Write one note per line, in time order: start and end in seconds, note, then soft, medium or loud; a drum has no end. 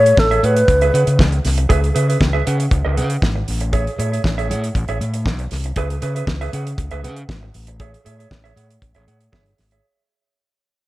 0.00 0.11 A2 loud
0.00 0.21 C#5 loud
0.06 0.17 G#4 soft
0.06 0.17 C#5 medium
0.06 0.18 E5 medium
0.06 closed hi-hat soft
0.17 0.36 A1 loud
0.17 0.46 A4 loud
0.17 muted clean electric guitar stroke soft
0.17 kick loud
0.17 snare loud
0.31 0.42 G#4 medium
0.31 0.43 C#5 medium
0.31 0.44 E5 loud
0.31 closed hi-hat soft
0.43 0.61 A2 medium
0.43 0.57 G#4 medium
0.43 1.20 B4 loud
0.43 0.56 C#5 medium
0.43 0.56 F#5 medium
0.43 closed hi-hat medium
0.56 muted clean electric guitar stroke medium
0.56 closed hi-hat medium
0.68 0.86 C#2 loud
0.68 muted clean electric guitar stroke soft
0.68 kick loud
0.68 closed hi-hat medium
0.81 0.93 G#4 medium
0.81 0.93 B4 medium
0.81 0.94 E5 medium
0.81 closed hi-hat soft
0.94 1.03 C#3 loud
0.94 1.07 G#4 medium
0.94 1.07 B4 medium
0.94 1.07 F#5 medium
0.94 closed hi-hat medium
1.07 1.21 C#3 medium
1.07 muted clean electric guitar stroke soft
1.07 closed hi-hat medium
1.19 1.37 C#2 medium
1.19 muted clean electric guitar stroke soft
1.19 kick loud
1.19 snare loud
1.32 muted clean electric guitar stroke soft
1.32 closed hi-hat soft
1.45 1.63 C2 loud
1.45 snare soft
1.45 open hi-hat medium
1.58 muted clean electric guitar stroke soft
1.58 closed hi-hat medium
1.69 1.88 C#2 loud
1.69 1.87 G#4 medium
1.69 1.82 B4 medium
1.69 1.81 E5 loud
1.69 kick loud
1.69 closed hi-hat medium
1.83 muted clean electric guitar stroke medium
1.83 closed hi-hat soft
1.95 2.14 C#3 loud
1.95 2.08 G#4 medium
1.95 2.08 B4 medium
1.95 2.07 E5 medium
1.95 closed hi-hat medium
2.09 2.19 G#4 medium
2.09 2.19 B4 medium
2.09 2.20 E5 medium
2.09 closed hi-hat soft
2.20 2.39 C#2 loud
2.20 muted clean electric guitar stroke soft
2.20 kick loud
2.20 snare loud
2.33 2.45 G#4 medium
2.33 2.46 B4 medium
2.33 2.47 E5 medium
2.46 2.65 C#3 loud
2.46 2.60 G#4 medium
2.46 2.59 B4 medium
2.46 2.59 F#5 medium
2.46 closed hi-hat medium
2.60 muted clean electric guitar stroke medium
2.60 closed hi-hat soft
2.71 2.81 C#2 loud
2.71 muted clean electric guitar stroke soft
2.71 kick loud
2.71 closed hi-hat medium
2.85 2.99 C#2 loud
2.85 2.95 G#4 medium
2.85 2.96 B4 medium
2.85 2.97 E5 medium
2.96 3.16 C#3 loud
2.96 3.10 G#4 medium
2.96 3.10 B4 medium
2.96 3.10 F#5 medium
2.96 closed hi-hat medium
3.10 muted clean electric guitar stroke soft
3.10 closed hi-hat medium
3.22 3.40 G#1 medium
3.22 muted clean electric guitar stroke soft
3.22 kick loud
3.22 snare loud
3.36 muted clean electric guitar stroke medium
3.48 3.84 A1 loud
3.48 open hi-hat medium
3.60 muted clean electric guitar stroke medium
3.60 closed hi-hat medium
3.73 3.90 G#4 medium
3.73 3.86 C#5 medium
3.73 3.85 E5 medium
3.73 kick loud
3.73 closed hi-hat medium
3.86 muted clean electric guitar stroke soft
3.86 closed hi-hat soft
3.98 4.17 A2 medium
3.98 4.12 G#4 medium
3.98 4.12 C#5 medium
3.98 4.11 E5 medium
3.98 closed hi-hat medium
4.12 4.23 G#4 soft
4.12 4.23 C#5 soft
4.12 4.23 E5 medium
4.12 closed hi-hat soft
4.24 4.51 A1 loud
4.24 muted clean electric guitar stroke soft
4.24 kick loud
4.24 snare loud
4.38 4.49 G#4 medium
4.38 4.49 C#5 medium
4.38 4.50 E5 medium
4.38 closed hi-hat soft
4.50 4.68 A2 medium
4.50 4.63 G#4 medium
4.50 4.63 C#5 medium
4.50 4.63 F#5 medium
4.50 closed hi-hat medium
4.64 muted clean electric guitar stroke medium
4.64 closed hi-hat medium
4.75 4.85 A1 loud
4.75 muted clean electric guitar stroke soft
4.75 kick loud
4.75 closed hi-hat medium
4.88 4.97 A1 medium
4.88 5.00 G#4 medium
4.88 5.00 C#5 medium
4.88 5.00 E5 medium
4.88 closed hi-hat soft
5.01 5.27 A2 medium
5.01 closed hi-hat medium
5.14 muted clean electric guitar stroke soft
5.14 closed hi-hat medium
5.26 5.44 B1 loud
5.26 muted clean electric guitar stroke soft
5.26 kick loud
5.26 snare loud
5.39 muted clean electric guitar stroke soft
5.39 closed hi-hat soft
5.51 5.70 C2 medium
5.51 snare soft
5.51 open hi-hat medium
5.64 muted clean electric guitar stroke soft
5.64 closed hi-hat medium
5.76 5.95 C#2 loud
5.76 5.94 G#4 medium
5.76 5.90 B4 loud
5.76 5.89 E5 medium
5.76 kick loud
5.76 closed hi-hat medium
5.90 muted clean electric guitar stroke soft
5.90 closed hi-hat soft
6.02 6.20 C#3 loud
6.02 6.15 G#4 medium
6.02 6.15 B4 medium
6.02 6.14 E5 medium
6.02 closed hi-hat medium
6.15 6.26 G#4 medium
6.15 6.26 B4 medium
6.15 6.27 E5 medium
6.15 closed hi-hat soft
6.27 6.45 C#2 loud
6.27 kick loud
6.27 snare loud
6.41 6.52 G#4 medium
6.41 6.52 B4 medium
6.41 6.54 E5 medium
6.41 closed hi-hat soft
6.53 6.71 C#3 loud
6.53 6.67 G#4 medium
6.53 6.66 B4 medium
6.53 6.66 F#5 medium
6.53 closed hi-hat medium
6.66 muted clean electric guitar stroke medium
6.66 closed hi-hat medium
6.78 6.88 C#2 loud
6.78 muted clean electric guitar stroke soft
6.78 kick loud
6.78 closed hi-hat medium
6.91 7.05 C#2 medium
6.91 7.02 G#4 medium
6.91 7.03 B4 medium
6.91 7.04 E5 medium
6.91 closed hi-hat soft
7.04 7.22 C#3 loud
7.04 7.17 G#4 medium
7.04 7.16 B4 medium
7.04 7.16 F#5 medium
7.04 closed hi-hat medium
7.16 muted clean electric guitar stroke soft
7.16 closed hi-hat soft
7.29 7.47 G#1 medium
7.29 muted clean electric guitar stroke soft
7.29 kick loud
7.29 snare loud
7.43 muted clean electric guitar stroke soft
7.54 7.91 A1 medium
7.54 open hi-hat medium
7.67 muted clean electric guitar stroke soft
7.67 closed hi-hat medium
7.80 7.97 G#4 medium
7.80 7.93 C#5 medium
7.80 7.92 E5 medium
7.80 kick loud
7.80 closed hi-hat medium
7.93 muted clean electric guitar stroke medium
7.93 closed hi-hat soft
8.05 8.24 A2 loud
8.05 8.18 G#4 medium
8.05 8.18 C#5 medium
8.05 8.18 E5 medium
8.05 closed hi-hat medium
8.19 8.29 G#4 medium
8.19 8.30 C#5 medium
8.19 8.30 E5 medium
8.19 closed hi-hat soft
8.31 8.49 A1 loud
8.31 kick loud
8.31 snare loud
8.44 8.55 G#4 medium
8.44 8.56 C#5 medium
8.44 8.57 E5 medium
8.44 closed hi-hat soft
8.56 8.75 A2 loud
8.56 8.70 G#4 medium
8.56 8.69 C#5 medium
8.56 8.69 F#5 medium
8.56 closed hi-hat medium
8.70 muted clean electric guitar stroke soft
8.70 closed hi-hat medium
8.82 8.92 A1 loud
8.82 muted clean electric guitar stroke soft
8.82 kick loud
8.82 closed hi-hat medium
8.95 9.04 A1 loud
8.95 9.06 G#4 medium
8.95 9.06 C#5 medium
8.95 9.07 E5 medium
8.95 closed hi-hat soft
9.07 9.26 A2 loud
9.07 9.21 G#4 medium
9.07 9.20 C#5 medium
9.07 9.20 F#5 medium
9.07 closed hi-hat medium
9.21 muted clean electric guitar stroke medium
9.21 closed hi-hat soft
9.32 9.51 G1 medium
9.32 9.50 G#4 medium
9.32 9.46 C#5 medium
9.32 9.45 E5 loud
9.32 kick loud
9.32 snare loud
9.46 muted clean electric guitar stroke soft
9.46 closed hi-hat soft
9.58 9.77 G#1 medium
9.58 muted clean electric guitar stroke soft
9.58 snare soft
9.58 open hi-hat medium
9.71 9.85 G#4 medium
9.71 9.85 C#5 medium
9.71 9.84 E5 medium
9.71 closed hi-hat medium